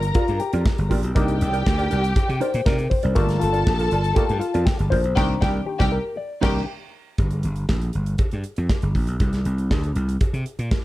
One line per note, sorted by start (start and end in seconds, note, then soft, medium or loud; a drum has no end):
0.00 0.11 G1 medium
0.00 0.18 A#4 loud
0.00 0.87 A#4 medium
0.00 0.87 A#5 loud
0.00 muted clean electric guitar stroke medium
0.00 closed hi-hat medium
0.15 0.41 F4 medium
0.15 0.28 F4 medium
0.15 0.28 A#4 medium
0.15 0.27 D5 medium
0.15 kick loud
0.15 closed hi-hat medium
0.15 cowbell medium
0.28 0.38 G2 medium
0.28 muted clean electric guitar stroke soft
0.28 closed hi-hat soft
0.40 0.88 G4 loud
0.40 muted clean electric guitar stroke soft
0.40 closed hi-hat medium
0.53 0.63 F2 loud
0.53 0.64 F4 medium
0.53 0.64 A#4 medium
0.53 0.64 D5 medium
0.53 closed hi-hat soft
0.66 kick loud
0.66 snare loud
0.66 cowbell medium
0.78 0.88 G1 medium
0.78 muted clean electric guitar stroke soft
0.78 closed hi-hat soft
0.90 1.04 A#1 medium
0.90 1.04 F4 loud
0.90 1.61 G4 medium
0.90 1.03 A#4 loud
0.90 1.02 D5 loud
0.90 kick medium
0.90 open hi-hat medium
1.03 1.14 B1 medium
1.03 muted clean electric guitar stroke soft
1.03 closed hi-hat soft
1.15 1.36 C2 loud
1.15 1.49 A#3 medium
1.15 1.49 D4 medium
1.15 1.39 D#4 medium
1.15 1.50 D#4 medium
1.15 2.88 G4 loud
1.15 1.39 A#4 medium
1.15 1.39 D5 medium
1.15 2.88 G5 loud
1.15 kick loud
1.15 closed hi-hat medium
1.15 cowbell loud
1.28 closed hi-hat soft
1.40 1.61 C2 medium
1.40 muted clean electric guitar stroke soft
1.40 closed hi-hat medium
1.53 1.64 D#4 soft
1.53 1.64 A#4 medium
1.53 1.64 D5 medium
1.53 closed hi-hat soft
1.66 1.87 D2 medium
1.66 muted clean electric guitar stroke soft
1.66 kick loud
1.66 snare loud
1.66 cowbell medium
1.78 1.89 D#4 medium
1.78 1.89 A#4 medium
1.78 1.89 D5 medium
1.78 closed hi-hat soft
1.90 2.12 C2 medium
1.90 2.04 D#4 medium
1.90 2.03 A#4 medium
1.90 2.02 D5 medium
1.90 closed hi-hat medium
2.03 muted clean electric guitar stroke soft
2.03 closed hi-hat soft
2.16 kick loud
2.16 closed hi-hat medium
2.16 cowbell medium
2.28 2.39 C3 loud
2.28 muted clean electric guitar stroke soft
2.28 closed hi-hat soft
2.41 2.54 D#4 medium
2.41 2.53 A#4 medium
2.41 2.65 C5 loud
2.41 2.52 D5 medium
2.41 closed hi-hat medium
2.54 2.64 A#2 loud
2.54 muted clean electric guitar stroke soft
2.54 closed hi-hat soft
2.66 2.87 C3 loud
2.66 2.79 D#4 medium
2.66 2.89 A#4 medium
2.66 2.78 A#4 medium
2.66 2.77 D5 medium
2.66 kick loud
2.66 snare loud
2.66 cowbell medium
2.79 muted clean electric guitar stroke soft
2.79 closed hi-hat soft
2.90 3.14 C5 medium
2.90 muted clean electric guitar stroke soft
2.90 kick medium
2.90 open hi-hat medium
3.03 3.14 C2 medium
3.03 3.14 D#4 medium
3.03 3.14 A#4 medium
3.03 3.14 D5 medium
3.03 closed hi-hat soft
3.15 3.37 G1 loud
3.15 3.49 A3 medium
3.15 3.50 A#3 medium
3.15 3.39 F4 medium
3.15 3.38 F4 medium
3.15 4.89 A4 loud
3.15 3.42 A#4 loud
3.15 3.39 A#4 loud
3.15 3.40 D5 medium
3.15 4.89 A5 loud
3.15 kick loud
3.15 closed hi-hat medium
3.15 cowbell medium
3.29 snare soft
3.29 closed hi-hat soft
3.39 3.62 G1 medium
3.39 4.16 F4 medium
3.39 closed hi-hat medium
3.53 3.65 F4 medium
3.53 3.64 A#4 medium
3.53 3.64 D5 medium
3.53 closed hi-hat soft
3.67 3.87 A#1 loud
3.67 kick loud
3.67 snare loud
3.67 cowbell medium
3.79 3.90 F4 medium
3.79 3.90 A#4 medium
3.79 3.89 F5 medium
3.79 closed hi-hat soft
3.91 4.12 G1 medium
3.91 4.05 F4 medium
3.91 4.04 A#4 medium
3.91 4.03 D5 medium
3.91 closed hi-hat medium
4.04 muted clean electric guitar stroke soft
4.04 closed hi-hat soft
4.15 4.39 A3 soft
4.15 4.39 A#3 soft
4.15 4.30 F4 loud
4.15 4.39 F4 medium
4.15 4.39 G4 medium
4.15 4.28 A#4 medium
4.15 4.28 D5 medium
4.15 kick loud
4.15 closed hi-hat medium
4.15 cowbell medium
4.29 4.40 G2 loud
4.29 muted clean electric guitar stroke soft
4.29 closed hi-hat soft
4.40 4.67 F4 medium
4.40 muted clean electric guitar stroke soft
4.40 closed hi-hat medium
4.54 4.65 F2 medium
4.54 4.65 F4 medium
4.54 4.65 A#4 medium
4.54 4.65 D5 medium
4.54 closed hi-hat soft
4.65 4.77 G4 medium
4.65 kick loud
4.65 snare loud
4.65 cowbell medium
4.79 4.90 G1 medium
4.79 muted clean electric guitar stroke soft
4.79 closed hi-hat soft
4.90 5.05 A#1 medium
4.90 5.05 F4 medium
4.90 5.03 A#4 medium
4.90 5.43 C5 loud
4.90 5.02 D5 medium
4.90 kick medium
4.90 open hi-hat medium
5.04 5.15 B1 medium
5.04 muted clean electric guitar stroke soft
5.04 closed hi-hat soft
5.16 5.34 C2 loud
5.16 5.89 D#3 medium
5.16 5.89 A#3 medium
5.16 5.89 D4 medium
5.16 5.34 D#4 medium
5.16 5.34 G4 loud
5.16 5.34 A#4 loud
5.16 5.35 D5 loud
5.16 5.34 G5 loud
5.16 kick loud
5.16 snare loud
5.16 crash medium
5.41 5.60 C2 loud
5.41 5.60 D#4 loud
5.41 5.59 G4 medium
5.41 5.59 A#4 loud
5.41 5.65 D5 medium
5.41 5.59 D5 loud
5.41 5.59 G5 medium
5.41 kick loud
5.41 snare loud
5.66 5.90 G4 loud
5.79 5.97 C2 medium
5.79 5.97 D#4 medium
5.79 5.97 G4 loud
5.79 5.97 A#4 medium
5.79 5.97 D5 medium
5.79 5.97 G5 medium
5.79 kick loud
5.79 snare loud
5.92 6.16 A#4 medium
6.17 6.41 D5 loud
6.41 6.60 C2 loud
6.41 6.65 D#3 medium
6.41 6.65 A#3 soft
6.41 6.66 D4 medium
6.41 6.59 D#4 loud
6.41 6.60 G4 loud
6.41 6.60 A#4 loud
6.41 6.60 D5 loud
6.41 6.60 G5 medium
6.41 kick loud
6.41 snare loud
6.41 crash medium
7.18 7.39 G1 loud
7.18 kick medium
7.18 closed hi-hat medium
7.18 cowbell medium
7.31 closed hi-hat soft
7.43 7.64 G1 medium
7.43 closed hi-hat medium
7.56 closed hi-hat soft
7.69 7.89 A#1 medium
7.69 kick loud
7.69 snare medium
7.69 cowbell medium
7.81 closed hi-hat soft
7.93 8.15 G1 medium
7.93 closed hi-hat soft
8.06 closed hi-hat soft
8.18 kick loud
8.18 closed hi-hat medium
8.18 cowbell medium
8.31 8.43 G2 medium
8.31 closed hi-hat soft
8.44 closed hi-hat soft
8.56 8.68 F2 medium
8.56 closed hi-hat soft
8.69 kick loud
8.69 snare medium
8.69 cowbell medium
8.82 8.93 G1 medium
8.82 closed hi-hat soft
8.95 9.08 A#1 medium
8.95 kick medium
8.95 open hi-hat soft
9.07 9.18 B1 medium
9.07 closed hi-hat soft
9.20 9.41 C2 loud
9.20 kick loud
9.20 closed hi-hat medium
9.20 cowbell medium
9.33 snare soft
9.33 closed hi-hat soft
9.45 9.71 C2 medium
9.45 closed hi-hat medium
9.58 closed hi-hat soft
9.71 9.91 D2 medium
9.71 kick medium
9.71 snare loud
9.71 cowbell medium
9.83 closed hi-hat soft
9.95 10.16 C2 medium
9.95 closed hi-hat medium
10.09 closed hi-hat soft
10.21 kick loud
10.21 closed hi-hat medium
10.21 cowbell medium
10.33 10.44 C3 medium
10.33 closed hi-hat soft
10.46 closed hi-hat medium
10.59 10.69 A#2 medium
10.59 closed hi-hat soft
10.71 kick loud
10.71 snare loud
10.71 cowbell medium